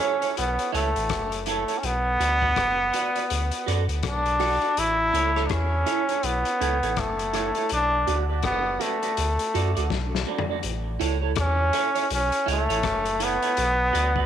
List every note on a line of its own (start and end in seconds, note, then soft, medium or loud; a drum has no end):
0.00 0.38 C#4 medium
0.00 0.15 E4 medium
0.00 0.15 A4 medium
0.00 0.16 C#5 loud
0.00 closed hi-hat medium
0.22 0.31 E4 medium
0.22 0.30 A4 medium
0.22 0.30 C#5 medium
0.22 closed hi-hat soft
0.37 0.58 B1 medium
0.37 0.72 B3 medium
0.37 closed hi-hat medium
0.59 closed hi-hat medium
0.72 0.94 C#2 medium
0.72 1.43 A3 medium
0.72 0.88 E4 medium
0.72 0.89 A4 medium
0.72 0.89 C#5 medium
0.72 closed hi-hat medium
0.96 1.10 A1 loud
0.96 closed hi-hat medium
1.09 1.65 F#1 medium
1.09 kick medium
1.09 cross-stick loud
1.09 closed hi-hat medium
1.32 closed hi-hat medium
1.46 1.80 A3 medium
1.46 1.62 E4 medium
1.46 1.63 A4 medium
1.46 1.63 C#5 medium
1.46 closed hi-hat medium
1.68 1.77 E4 soft
1.68 1.77 A4 soft
1.68 1.77 C#5 medium
1.68 closed hi-hat medium
1.79 1.87 C#4 medium
1.83 2.17 B1 loud
1.83 3.79 B3 loud
1.83 closed hi-hat medium
2.20 2.54 D2 loud
2.20 2.36 F#4 medium
2.20 2.36 B4 medium
2.20 2.37 D5 loud
2.20 closed hi-hat medium
2.42 2.51 F#4 medium
2.42 2.51 B4 medium
2.42 2.50 D5 medium
2.42 kick medium
2.56 2.91 F#1 medium
2.56 kick medium
2.56 cross-stick loud
2.56 closed hi-hat medium
2.93 3.09 F#4 medium
2.93 3.10 B4 medium
2.93 3.10 D5 medium
2.93 closed hi-hat medium
3.16 3.25 F#4 medium
3.16 3.24 B4 medium
3.16 3.24 D5 medium
3.16 closed hi-hat soft
3.30 3.51 D2 medium
3.30 closed hi-hat medium
3.51 closed hi-hat medium
3.66 3.88 F#2 medium
3.66 3.82 F#4 medium
3.66 3.83 A4 medium
3.66 3.83 D5 medium
3.66 closed hi-hat medium
3.88 4.02 D2 medium
3.88 closed hi-hat soft
4.03 4.58 B1 loud
4.03 4.81 D4 loud
4.03 kick loud
4.03 cross-stick loud
4.03 closed hi-hat medium
4.26 closed hi-hat medium
4.39 4.55 F#4 medium
4.39 4.56 A4 medium
4.39 4.56 D5 medium
4.39 cross-stick medium
4.39 open hi-hat medium
4.62 4.71 F#4 soft
4.62 4.71 A4 medium
4.62 4.70 D5 medium
4.62 closed hi-hat medium
4.77 5.11 A1 loud
4.77 5.48 E4 loud
4.77 closed hi-hat medium
5.13 5.48 C#2 medium
5.13 5.29 E4 medium
5.13 5.30 A4 medium
5.13 5.30 C#5 loud
5.13 closed hi-hat medium
5.36 5.45 E4 medium
5.36 5.44 A4 medium
5.36 5.44 C#5 medium
5.36 cross-stick medium
5.47 5.85 E2 medium
5.47 5.54 D4 medium
5.47 kick loud
5.47 cross-stick loud
5.47 closed hi-hat medium
5.53 6.27 C#4 loud
5.86 6.02 E4 medium
5.86 6.03 A4 medium
5.86 6.03 C#5 loud
5.86 closed hi-hat medium
6.08 6.18 E4 medium
6.08 6.17 A4 medium
6.08 6.17 C#5 medium
6.08 closed hi-hat soft
6.23 6.44 B1 medium
6.23 7.01 B3 medium
6.23 closed hi-hat medium
6.45 closed hi-hat medium
6.61 6.81 C#2 medium
6.61 6.76 E4 medium
6.61 6.76 A4 medium
6.61 6.77 C#5 medium
6.61 closed hi-hat medium
6.83 6.96 A1 loud
6.83 6.91 E4 soft
6.83 6.91 A4 medium
6.83 6.91 C#5 medium
6.83 closed hi-hat soft
6.97 7.52 F#1 medium
6.97 7.72 A3 medium
6.97 kick loud
6.97 cross-stick loud
6.97 closed hi-hat medium
7.19 closed hi-hat medium
7.33 7.49 E4 medium
7.33 7.50 A4 medium
7.33 7.50 C#5 medium
7.33 cross-stick medium
7.33 closed hi-hat medium
7.55 7.65 E4 soft
7.55 7.65 A4 medium
7.55 7.64 C#5 medium
7.55 closed hi-hat medium
7.69 8.05 B1 loud
7.69 closed hi-hat medium
7.73 8.17 D4 loud
8.07 8.42 D2 loud
8.07 8.23 F#4 medium
8.07 8.23 B4 medium
8.07 8.24 D5 loud
8.07 closed hi-hat medium
8.29 8.38 F#4 medium
8.29 8.38 B4 medium
8.29 8.37 D5 medium
8.43 8.78 F#1 medium
8.43 8.84 B3 medium
8.43 kick loud
8.43 cross-stick loud
8.43 closed hi-hat medium
8.80 10.28 A3 medium
8.80 8.96 F#4 medium
8.80 8.96 B4 medium
8.80 8.96 D5 medium
8.80 closed hi-hat medium
9.02 9.11 F#4 soft
9.02 9.11 B4 soft
9.02 9.11 D5 medium
9.02 closed hi-hat medium
9.17 9.38 D2 loud
9.17 closed hi-hat medium
9.39 closed hi-hat medium
9.54 9.75 F#2 medium
9.54 9.70 F#4 medium
9.54 9.70 A4 medium
9.54 9.70 D5 medium
9.54 closed hi-hat medium
9.75 9.90 D2 medium
9.75 9.85 F#4 medium
9.75 9.84 A4 medium
9.75 9.84 D5 medium
9.75 closed hi-hat medium
9.90 10.25 B1 medium
9.90 kick loud
9.90 snare medium
10.15 snare medium
10.27 10.43 F#4 medium
10.27 10.43 A4 medium
10.27 10.43 D5 medium
10.39 floor tom loud
10.49 10.58 F#4 soft
10.49 10.58 A4 medium
10.49 10.57 D5 medium
10.63 10.98 A1 loud
10.63 closed hi-hat medium
11.00 11.35 C#2 loud
11.00 11.16 E4 medium
11.00 11.16 A4 medium
11.00 11.16 C#5 loud
11.00 closed hi-hat medium
11.22 11.31 E4 soft
11.22 11.31 A4 medium
11.22 11.30 C#5 medium
11.36 11.71 E2 loud
11.36 kick loud
11.36 cross-stick loud
11.36 closed hi-hat medium
11.40 12.08 C#4 loud
11.73 11.89 E4 medium
11.73 11.89 A4 medium
11.73 11.90 C#5 medium
11.73 closed hi-hat medium
11.95 12.04 E4 medium
11.95 12.04 A4 medium
11.95 12.03 C#5 medium
11.95 closed hi-hat medium
12.10 12.31 B1 medium
12.10 12.46 C#4 medium
12.10 closed hi-hat medium
12.32 closed hi-hat medium
12.46 12.68 C#2 medium
12.46 12.62 E4 medium
12.46 12.63 A4 medium
12.46 12.63 C#5 medium
12.46 closed hi-hat medium
12.50 13.25 A3 medium
12.69 12.83 A1 loud
12.69 12.78 E4 medium
12.69 12.78 A4 medium
12.69 12.77 C#5 medium
12.69 closed hi-hat medium
12.83 13.38 F#1 loud
12.83 kick loud
12.83 cross-stick loud
12.83 closed hi-hat medium
13.05 closed hi-hat medium
13.20 13.36 E4 medium
13.20 13.36 A4 loud
13.20 13.36 C#5 medium
13.20 closed hi-hat medium
13.24 14.26 B3 loud
13.42 13.51 E4 soft
13.42 13.51 A4 soft
13.42 13.51 C#5 medium
13.42 closed hi-hat medium
13.57 13.91 B1 loud
13.57 closed hi-hat medium
13.93 14.26 D2 loud
13.93 14.09 F#4 medium
13.93 14.10 B4 loud
13.93 14.10 D5 loud
13.93 closed hi-hat medium
14.16 14.25 F#4 medium
14.16 14.24 B4 medium
14.16 14.24 D5 medium
14.16 kick medium